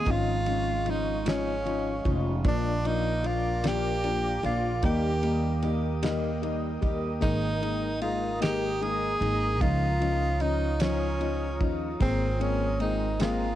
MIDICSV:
0, 0, Header, 1, 7, 480
1, 0, Start_track
1, 0, Key_signature, -4, "major"
1, 0, Tempo, 796813
1, 37, Time_signature, 6, 3, 24, 8
1, 8164, End_track
2, 0, Start_track
2, 0, Title_t, "Ambient pad"
2, 0, Program_c, 0, 92
2, 0, Note_on_c, 0, 56, 70
2, 0, Note_on_c, 0, 75, 65
2, 0, Note_on_c, 0, 77, 65
2, 48, Note_on_c, 0, 85, 83
2, 1448, Note_off_c, 0, 56, 0
2, 1451, Note_off_c, 0, 75, 0
2, 1466, Note_off_c, 0, 85, 0
2, 1479, Note_on_c, 0, 86, 90
2, 1480, Note_on_c, 0, 70, 69
2, 1482, Note_on_c, 0, 74, 67
2, 2887, Note_off_c, 0, 77, 0
2, 2900, Note_off_c, 0, 86, 0
2, 2902, Note_off_c, 0, 74, 0
2, 2917, Note_on_c, 0, 75, 67
2, 2921, Note_on_c, 0, 79, 67
2, 2921, Note_on_c, 0, 87, 89
2, 4341, Note_off_c, 0, 79, 0
2, 4357, Note_on_c, 0, 82, 68
2, 5769, Note_off_c, 0, 70, 0
2, 5769, Note_off_c, 0, 75, 0
2, 5789, Note_on_c, 0, 65, 72
2, 5791, Note_on_c, 0, 73, 67
2, 7210, Note_off_c, 0, 82, 0
2, 7211, Note_off_c, 0, 87, 0
2, 7216, Note_off_c, 0, 65, 0
2, 7217, Note_off_c, 0, 73, 0
2, 7235, Note_on_c, 0, 56, 76
2, 7237, Note_on_c, 0, 82, 68
2, 7238, Note_on_c, 0, 87, 76
2, 7239, Note_on_c, 0, 72, 72
2, 8164, Note_off_c, 0, 56, 0
2, 8164, Note_off_c, 0, 72, 0
2, 8164, Note_off_c, 0, 82, 0
2, 8164, Note_off_c, 0, 87, 0
2, 8164, End_track
3, 0, Start_track
3, 0, Title_t, "Tenor saxophone"
3, 0, Program_c, 1, 66
3, 0, Note_on_c, 1, 68, 98
3, 66, Note_on_c, 1, 65, 118
3, 75, Note_off_c, 1, 68, 0
3, 543, Note_on_c, 1, 63, 96
3, 552, Note_off_c, 1, 65, 0
3, 769, Note_off_c, 1, 63, 0
3, 777, Note_on_c, 1, 61, 92
3, 1281, Note_off_c, 1, 61, 0
3, 1497, Note_on_c, 1, 62, 99
3, 1729, Note_on_c, 1, 63, 104
3, 1738, Note_off_c, 1, 62, 0
3, 1968, Note_on_c, 1, 65, 93
3, 1977, Note_off_c, 1, 63, 0
3, 2212, Note_on_c, 1, 67, 98
3, 2221, Note_off_c, 1, 65, 0
3, 2682, Note_off_c, 1, 67, 0
3, 2685, Note_on_c, 1, 65, 91
3, 2902, Note_off_c, 1, 65, 0
3, 2924, Note_on_c, 1, 67, 92
3, 3434, Note_off_c, 1, 67, 0
3, 4353, Note_on_c, 1, 63, 102
3, 4808, Note_off_c, 1, 63, 0
3, 4829, Note_on_c, 1, 65, 88
3, 5053, Note_off_c, 1, 65, 0
3, 5074, Note_on_c, 1, 67, 96
3, 5319, Note_on_c, 1, 68, 112
3, 5328, Note_off_c, 1, 67, 0
3, 5790, Note_on_c, 1, 65, 108
3, 5799, Note_off_c, 1, 68, 0
3, 6272, Note_on_c, 1, 63, 91
3, 6282, Note_off_c, 1, 65, 0
3, 6514, Note_on_c, 1, 61, 87
3, 6523, Note_off_c, 1, 63, 0
3, 7053, Note_off_c, 1, 61, 0
3, 7239, Note_on_c, 1, 60, 98
3, 7483, Note_on_c, 1, 61, 91
3, 7492, Note_off_c, 1, 60, 0
3, 7715, Note_off_c, 1, 61, 0
3, 7718, Note_on_c, 1, 63, 85
3, 7939, Note_off_c, 1, 63, 0
3, 7962, Note_on_c, 1, 65, 80
3, 8164, Note_off_c, 1, 65, 0
3, 8164, End_track
4, 0, Start_track
4, 0, Title_t, "Steel-string acoustic guitar"
4, 0, Program_c, 2, 25
4, 0, Note_on_c, 2, 56, 74
4, 0, Note_on_c, 2, 60, 54
4, 31, Note_on_c, 2, 51, 77
4, 36, Note_on_c, 2, 65, 65
4, 84, Note_off_c, 2, 60, 0
4, 277, Note_off_c, 2, 56, 0
4, 279, Note_on_c, 2, 56, 56
4, 515, Note_off_c, 2, 65, 0
4, 518, Note_on_c, 2, 65, 69
4, 749, Note_off_c, 2, 56, 0
4, 756, Note_on_c, 2, 56, 75
4, 994, Note_on_c, 2, 61, 59
4, 1231, Note_off_c, 2, 65, 0
4, 1234, Note_on_c, 2, 65, 69
4, 1472, Note_off_c, 2, 51, 0
4, 1475, Note_off_c, 2, 65, 0
4, 1475, Note_on_c, 2, 53, 84
4, 1477, Note_on_c, 2, 65, 69
4, 1522, Note_off_c, 2, 61, 0
4, 1523, Note_off_c, 2, 56, 0
4, 1715, Note_on_c, 2, 58, 61
4, 1942, Note_off_c, 2, 65, 0
4, 1950, Note_on_c, 2, 65, 63
4, 2190, Note_off_c, 2, 58, 0
4, 2192, Note_on_c, 2, 58, 70
4, 2434, Note_on_c, 2, 62, 55
4, 2666, Note_off_c, 2, 65, 0
4, 2673, Note_on_c, 2, 65, 71
4, 2912, Note_off_c, 2, 53, 0
4, 2913, Note_off_c, 2, 65, 0
4, 2916, Note_on_c, 2, 51, 71
4, 2920, Note_on_c, 2, 67, 67
4, 2961, Note_off_c, 2, 62, 0
4, 3155, Note_off_c, 2, 58, 0
4, 3158, Note_on_c, 2, 58, 54
4, 3388, Note_off_c, 2, 67, 0
4, 3395, Note_on_c, 2, 67, 72
4, 3631, Note_off_c, 2, 58, 0
4, 3634, Note_on_c, 2, 58, 70
4, 3872, Note_on_c, 2, 63, 50
4, 4101, Note_off_c, 2, 67, 0
4, 4108, Note_on_c, 2, 67, 67
4, 4341, Note_off_c, 2, 51, 0
4, 4343, Note_on_c, 2, 51, 77
4, 4346, Note_off_c, 2, 63, 0
4, 4349, Note_on_c, 2, 63, 70
4, 4397, Note_off_c, 2, 67, 0
4, 4588, Note_off_c, 2, 51, 0
4, 4591, Note_on_c, 2, 51, 54
4, 4826, Note_off_c, 2, 63, 0
4, 4829, Note_on_c, 2, 63, 66
4, 5068, Note_off_c, 2, 51, 0
4, 5071, Note_on_c, 2, 51, 67
4, 5311, Note_off_c, 2, 58, 0
4, 5313, Note_on_c, 2, 58, 56
4, 5548, Note_off_c, 2, 63, 0
4, 5551, Note_on_c, 2, 63, 72
4, 5792, Note_off_c, 2, 51, 0
4, 5795, Note_on_c, 2, 53, 74
4, 5796, Note_off_c, 2, 63, 0
4, 5798, Note_on_c, 2, 63, 69
4, 5840, Note_off_c, 2, 58, 0
4, 6024, Note_off_c, 2, 53, 0
4, 6031, Note_on_c, 2, 53, 54
4, 6269, Note_off_c, 2, 63, 0
4, 6272, Note_on_c, 2, 63, 69
4, 6508, Note_off_c, 2, 53, 0
4, 6515, Note_on_c, 2, 53, 70
4, 6752, Note_on_c, 2, 56, 55
4, 6989, Note_off_c, 2, 63, 0
4, 6992, Note_on_c, 2, 63, 67
4, 7233, Note_off_c, 2, 53, 0
4, 7238, Note_on_c, 2, 51, 81
4, 7244, Note_on_c, 2, 68, 70
4, 7471, Note_off_c, 2, 56, 0
4, 7473, Note_on_c, 2, 58, 59
4, 7718, Note_off_c, 2, 68, 0
4, 7954, Note_off_c, 2, 58, 0
4, 7957, Note_on_c, 2, 58, 71
4, 8164, Note_off_c, 2, 51, 0
4, 8164, Note_off_c, 2, 58, 0
4, 8164, Note_off_c, 2, 63, 0
4, 8164, End_track
5, 0, Start_track
5, 0, Title_t, "Upright piano"
5, 0, Program_c, 3, 0
5, 40, Note_on_c, 3, 53, 78
5, 41, Note_on_c, 3, 61, 81
5, 45, Note_on_c, 3, 63, 96
5, 194, Note_off_c, 3, 53, 0
5, 195, Note_off_c, 3, 61, 0
5, 197, Note_off_c, 3, 63, 0
5, 278, Note_on_c, 3, 53, 62
5, 280, Note_on_c, 3, 61, 65
5, 285, Note_on_c, 3, 63, 72
5, 433, Note_off_c, 3, 53, 0
5, 434, Note_off_c, 3, 61, 0
5, 437, Note_off_c, 3, 63, 0
5, 519, Note_on_c, 3, 53, 69
5, 520, Note_on_c, 3, 61, 63
5, 523, Note_on_c, 3, 63, 78
5, 673, Note_off_c, 3, 53, 0
5, 674, Note_off_c, 3, 61, 0
5, 676, Note_off_c, 3, 63, 0
5, 757, Note_on_c, 3, 53, 91
5, 761, Note_on_c, 3, 63, 108
5, 762, Note_on_c, 3, 61, 82
5, 912, Note_off_c, 3, 53, 0
5, 914, Note_off_c, 3, 63, 0
5, 915, Note_off_c, 3, 61, 0
5, 997, Note_on_c, 3, 53, 75
5, 1000, Note_on_c, 3, 61, 65
5, 1002, Note_on_c, 3, 63, 83
5, 1152, Note_off_c, 3, 53, 0
5, 1153, Note_off_c, 3, 61, 0
5, 1154, Note_off_c, 3, 63, 0
5, 1236, Note_on_c, 3, 53, 74
5, 1238, Note_on_c, 3, 63, 74
5, 1240, Note_on_c, 3, 61, 65
5, 1391, Note_off_c, 3, 53, 0
5, 1392, Note_off_c, 3, 63, 0
5, 1393, Note_off_c, 3, 61, 0
5, 1472, Note_on_c, 3, 53, 89
5, 1476, Note_on_c, 3, 58, 88
5, 1476, Note_on_c, 3, 62, 93
5, 1629, Note_off_c, 3, 53, 0
5, 1631, Note_off_c, 3, 58, 0
5, 1631, Note_off_c, 3, 62, 0
5, 1714, Note_on_c, 3, 53, 72
5, 1717, Note_on_c, 3, 62, 86
5, 1718, Note_on_c, 3, 58, 66
5, 1870, Note_off_c, 3, 53, 0
5, 1872, Note_off_c, 3, 58, 0
5, 1872, Note_off_c, 3, 62, 0
5, 1947, Note_on_c, 3, 53, 70
5, 1952, Note_on_c, 3, 58, 61
5, 1954, Note_on_c, 3, 62, 77
5, 2106, Note_off_c, 3, 53, 0
5, 2109, Note_off_c, 3, 58, 0
5, 2110, Note_off_c, 3, 62, 0
5, 2192, Note_on_c, 3, 53, 93
5, 2192, Note_on_c, 3, 58, 90
5, 2196, Note_on_c, 3, 62, 93
5, 2348, Note_off_c, 3, 53, 0
5, 2349, Note_off_c, 3, 58, 0
5, 2350, Note_off_c, 3, 62, 0
5, 2433, Note_on_c, 3, 53, 76
5, 2435, Note_on_c, 3, 58, 64
5, 2437, Note_on_c, 3, 62, 78
5, 2589, Note_off_c, 3, 53, 0
5, 2590, Note_off_c, 3, 58, 0
5, 2591, Note_off_c, 3, 62, 0
5, 2668, Note_on_c, 3, 53, 74
5, 2670, Note_on_c, 3, 58, 66
5, 2672, Note_on_c, 3, 62, 82
5, 2826, Note_off_c, 3, 53, 0
5, 2827, Note_off_c, 3, 58, 0
5, 2828, Note_off_c, 3, 62, 0
5, 2907, Note_on_c, 3, 55, 80
5, 2910, Note_on_c, 3, 58, 81
5, 2910, Note_on_c, 3, 63, 106
5, 3065, Note_off_c, 3, 55, 0
5, 3067, Note_off_c, 3, 58, 0
5, 3067, Note_off_c, 3, 63, 0
5, 3149, Note_on_c, 3, 55, 67
5, 3149, Note_on_c, 3, 58, 58
5, 3155, Note_on_c, 3, 63, 73
5, 3306, Note_off_c, 3, 55, 0
5, 3306, Note_off_c, 3, 58, 0
5, 3309, Note_off_c, 3, 63, 0
5, 3390, Note_on_c, 3, 55, 67
5, 3390, Note_on_c, 3, 58, 62
5, 3395, Note_on_c, 3, 63, 74
5, 3547, Note_off_c, 3, 55, 0
5, 3547, Note_off_c, 3, 58, 0
5, 3549, Note_off_c, 3, 63, 0
5, 3629, Note_on_c, 3, 55, 86
5, 3629, Note_on_c, 3, 58, 81
5, 3632, Note_on_c, 3, 63, 103
5, 3786, Note_off_c, 3, 55, 0
5, 3786, Note_off_c, 3, 58, 0
5, 3788, Note_off_c, 3, 63, 0
5, 3866, Note_on_c, 3, 55, 62
5, 3867, Note_on_c, 3, 58, 59
5, 3869, Note_on_c, 3, 63, 80
5, 4025, Note_off_c, 3, 55, 0
5, 4025, Note_off_c, 3, 58, 0
5, 4026, Note_off_c, 3, 63, 0
5, 4104, Note_on_c, 3, 55, 69
5, 4111, Note_on_c, 3, 58, 56
5, 4111, Note_on_c, 3, 63, 76
5, 4263, Note_off_c, 3, 55, 0
5, 4267, Note_off_c, 3, 58, 0
5, 4267, Note_off_c, 3, 63, 0
5, 4340, Note_on_c, 3, 56, 84
5, 4345, Note_on_c, 3, 58, 75
5, 4348, Note_on_c, 3, 63, 97
5, 4502, Note_off_c, 3, 56, 0
5, 4504, Note_off_c, 3, 58, 0
5, 4506, Note_off_c, 3, 63, 0
5, 4584, Note_on_c, 3, 56, 66
5, 4585, Note_on_c, 3, 58, 65
5, 4589, Note_on_c, 3, 63, 76
5, 4743, Note_off_c, 3, 56, 0
5, 4744, Note_off_c, 3, 58, 0
5, 4746, Note_off_c, 3, 63, 0
5, 4828, Note_on_c, 3, 56, 67
5, 4830, Note_on_c, 3, 58, 59
5, 4834, Note_on_c, 3, 63, 75
5, 4985, Note_off_c, 3, 56, 0
5, 4986, Note_off_c, 3, 58, 0
5, 4988, Note_off_c, 3, 63, 0
5, 5064, Note_on_c, 3, 56, 81
5, 5068, Note_on_c, 3, 58, 82
5, 5068, Note_on_c, 3, 63, 105
5, 5223, Note_off_c, 3, 56, 0
5, 5225, Note_off_c, 3, 58, 0
5, 5226, Note_off_c, 3, 63, 0
5, 5306, Note_on_c, 3, 56, 66
5, 5308, Note_on_c, 3, 58, 68
5, 5308, Note_on_c, 3, 63, 78
5, 5464, Note_off_c, 3, 56, 0
5, 5465, Note_off_c, 3, 58, 0
5, 5465, Note_off_c, 3, 63, 0
5, 5548, Note_on_c, 3, 58, 59
5, 5549, Note_on_c, 3, 56, 70
5, 5552, Note_on_c, 3, 63, 75
5, 5706, Note_off_c, 3, 56, 0
5, 5706, Note_off_c, 3, 58, 0
5, 5707, Note_off_c, 3, 63, 0
5, 5787, Note_on_c, 3, 53, 86
5, 5788, Note_on_c, 3, 61, 77
5, 5791, Note_on_c, 3, 63, 103
5, 5945, Note_off_c, 3, 53, 0
5, 5946, Note_off_c, 3, 61, 0
5, 5947, Note_off_c, 3, 63, 0
5, 6025, Note_on_c, 3, 53, 69
5, 6027, Note_on_c, 3, 61, 61
5, 6032, Note_on_c, 3, 63, 75
5, 6184, Note_off_c, 3, 53, 0
5, 6185, Note_off_c, 3, 61, 0
5, 6187, Note_off_c, 3, 63, 0
5, 6265, Note_on_c, 3, 61, 66
5, 6268, Note_on_c, 3, 53, 70
5, 6269, Note_on_c, 3, 63, 79
5, 6424, Note_off_c, 3, 61, 0
5, 6425, Note_off_c, 3, 53, 0
5, 6426, Note_off_c, 3, 63, 0
5, 6509, Note_on_c, 3, 53, 89
5, 6509, Note_on_c, 3, 63, 100
5, 6511, Note_on_c, 3, 61, 85
5, 6666, Note_off_c, 3, 53, 0
5, 6666, Note_off_c, 3, 63, 0
5, 6667, Note_off_c, 3, 61, 0
5, 6747, Note_on_c, 3, 61, 68
5, 6749, Note_on_c, 3, 63, 83
5, 6750, Note_on_c, 3, 53, 78
5, 6905, Note_off_c, 3, 61, 0
5, 6906, Note_off_c, 3, 63, 0
5, 6907, Note_off_c, 3, 53, 0
5, 6989, Note_on_c, 3, 53, 72
5, 6990, Note_on_c, 3, 61, 69
5, 6993, Note_on_c, 3, 63, 80
5, 7146, Note_off_c, 3, 53, 0
5, 7147, Note_off_c, 3, 61, 0
5, 7148, Note_off_c, 3, 63, 0
5, 7226, Note_on_c, 3, 56, 90
5, 7230, Note_on_c, 3, 58, 86
5, 7234, Note_on_c, 3, 60, 95
5, 7385, Note_off_c, 3, 56, 0
5, 7387, Note_off_c, 3, 58, 0
5, 7389, Note_off_c, 3, 60, 0
5, 7467, Note_on_c, 3, 56, 74
5, 7469, Note_on_c, 3, 58, 70
5, 7472, Note_on_c, 3, 60, 83
5, 7626, Note_off_c, 3, 56, 0
5, 7626, Note_off_c, 3, 58, 0
5, 7628, Note_off_c, 3, 60, 0
5, 7709, Note_on_c, 3, 56, 78
5, 7713, Note_on_c, 3, 58, 73
5, 7714, Note_on_c, 3, 60, 82
5, 7866, Note_off_c, 3, 56, 0
5, 7868, Note_off_c, 3, 58, 0
5, 7869, Note_off_c, 3, 60, 0
5, 7949, Note_on_c, 3, 56, 96
5, 7954, Note_on_c, 3, 58, 88
5, 7955, Note_on_c, 3, 60, 100
5, 8107, Note_off_c, 3, 56, 0
5, 8109, Note_off_c, 3, 58, 0
5, 8110, Note_off_c, 3, 60, 0
5, 8164, End_track
6, 0, Start_track
6, 0, Title_t, "Upright bass"
6, 0, Program_c, 4, 32
6, 41, Note_on_c, 4, 32, 96
6, 1213, Note_off_c, 4, 32, 0
6, 1236, Note_on_c, 4, 29, 90
6, 1461, Note_off_c, 4, 29, 0
6, 1474, Note_on_c, 4, 34, 98
6, 2649, Note_off_c, 4, 34, 0
6, 2669, Note_on_c, 4, 34, 84
6, 2896, Note_off_c, 4, 34, 0
6, 2912, Note_on_c, 4, 39, 113
6, 4087, Note_off_c, 4, 39, 0
6, 4112, Note_on_c, 4, 39, 72
6, 4337, Note_off_c, 4, 39, 0
6, 4349, Note_on_c, 4, 32, 92
6, 5526, Note_off_c, 4, 32, 0
6, 5547, Note_on_c, 4, 32, 84
6, 5791, Note_off_c, 4, 32, 0
6, 5791, Note_on_c, 4, 37, 98
6, 6992, Note_off_c, 4, 37, 0
6, 6992, Note_on_c, 4, 39, 91
6, 7217, Note_off_c, 4, 39, 0
6, 7232, Note_on_c, 4, 32, 93
6, 8164, Note_off_c, 4, 32, 0
6, 8164, End_track
7, 0, Start_track
7, 0, Title_t, "Drums"
7, 39, Note_on_c, 9, 36, 109
7, 39, Note_on_c, 9, 51, 62
7, 99, Note_off_c, 9, 36, 0
7, 99, Note_off_c, 9, 51, 0
7, 278, Note_on_c, 9, 51, 46
7, 338, Note_off_c, 9, 51, 0
7, 517, Note_on_c, 9, 51, 44
7, 577, Note_off_c, 9, 51, 0
7, 759, Note_on_c, 9, 51, 79
7, 770, Note_on_c, 9, 38, 113
7, 819, Note_off_c, 9, 51, 0
7, 830, Note_off_c, 9, 38, 0
7, 1002, Note_on_c, 9, 51, 37
7, 1062, Note_off_c, 9, 51, 0
7, 1237, Note_on_c, 9, 36, 86
7, 1240, Note_on_c, 9, 51, 40
7, 1298, Note_off_c, 9, 36, 0
7, 1300, Note_off_c, 9, 51, 0
7, 1473, Note_on_c, 9, 51, 67
7, 1475, Note_on_c, 9, 36, 118
7, 1533, Note_off_c, 9, 51, 0
7, 1535, Note_off_c, 9, 36, 0
7, 1717, Note_on_c, 9, 51, 45
7, 1777, Note_off_c, 9, 51, 0
7, 1953, Note_on_c, 9, 51, 44
7, 2013, Note_off_c, 9, 51, 0
7, 2192, Note_on_c, 9, 51, 78
7, 2202, Note_on_c, 9, 38, 109
7, 2252, Note_off_c, 9, 51, 0
7, 2262, Note_off_c, 9, 38, 0
7, 2432, Note_on_c, 9, 51, 39
7, 2493, Note_off_c, 9, 51, 0
7, 2677, Note_on_c, 9, 51, 39
7, 2737, Note_off_c, 9, 51, 0
7, 2907, Note_on_c, 9, 51, 63
7, 2910, Note_on_c, 9, 36, 113
7, 2967, Note_off_c, 9, 51, 0
7, 2970, Note_off_c, 9, 36, 0
7, 3150, Note_on_c, 9, 51, 44
7, 3210, Note_off_c, 9, 51, 0
7, 3388, Note_on_c, 9, 51, 46
7, 3449, Note_off_c, 9, 51, 0
7, 3630, Note_on_c, 9, 51, 87
7, 3641, Note_on_c, 9, 38, 102
7, 3690, Note_off_c, 9, 51, 0
7, 3701, Note_off_c, 9, 38, 0
7, 3873, Note_on_c, 9, 51, 38
7, 3933, Note_off_c, 9, 51, 0
7, 4112, Note_on_c, 9, 36, 89
7, 4113, Note_on_c, 9, 51, 36
7, 4172, Note_off_c, 9, 36, 0
7, 4174, Note_off_c, 9, 51, 0
7, 4350, Note_on_c, 9, 36, 112
7, 4350, Note_on_c, 9, 51, 68
7, 4410, Note_off_c, 9, 51, 0
7, 4411, Note_off_c, 9, 36, 0
7, 4594, Note_on_c, 9, 51, 46
7, 4654, Note_off_c, 9, 51, 0
7, 4828, Note_on_c, 9, 51, 44
7, 4888, Note_off_c, 9, 51, 0
7, 5071, Note_on_c, 9, 51, 87
7, 5082, Note_on_c, 9, 38, 117
7, 5131, Note_off_c, 9, 51, 0
7, 5142, Note_off_c, 9, 38, 0
7, 5315, Note_on_c, 9, 51, 36
7, 5376, Note_off_c, 9, 51, 0
7, 5553, Note_on_c, 9, 51, 40
7, 5613, Note_off_c, 9, 51, 0
7, 5790, Note_on_c, 9, 36, 108
7, 5790, Note_on_c, 9, 51, 70
7, 5850, Note_off_c, 9, 36, 0
7, 5850, Note_off_c, 9, 51, 0
7, 6033, Note_on_c, 9, 51, 43
7, 6094, Note_off_c, 9, 51, 0
7, 6265, Note_on_c, 9, 51, 45
7, 6325, Note_off_c, 9, 51, 0
7, 6505, Note_on_c, 9, 51, 86
7, 6515, Note_on_c, 9, 38, 124
7, 6565, Note_off_c, 9, 51, 0
7, 6576, Note_off_c, 9, 38, 0
7, 6751, Note_on_c, 9, 51, 36
7, 6812, Note_off_c, 9, 51, 0
7, 6991, Note_on_c, 9, 51, 37
7, 6992, Note_on_c, 9, 36, 89
7, 7051, Note_off_c, 9, 51, 0
7, 7052, Note_off_c, 9, 36, 0
7, 7231, Note_on_c, 9, 51, 75
7, 7233, Note_on_c, 9, 36, 105
7, 7292, Note_off_c, 9, 51, 0
7, 7293, Note_off_c, 9, 36, 0
7, 7475, Note_on_c, 9, 51, 49
7, 7536, Note_off_c, 9, 51, 0
7, 7711, Note_on_c, 9, 51, 45
7, 7771, Note_off_c, 9, 51, 0
7, 7950, Note_on_c, 9, 51, 82
7, 7961, Note_on_c, 9, 38, 113
7, 8010, Note_off_c, 9, 51, 0
7, 8021, Note_off_c, 9, 38, 0
7, 8164, End_track
0, 0, End_of_file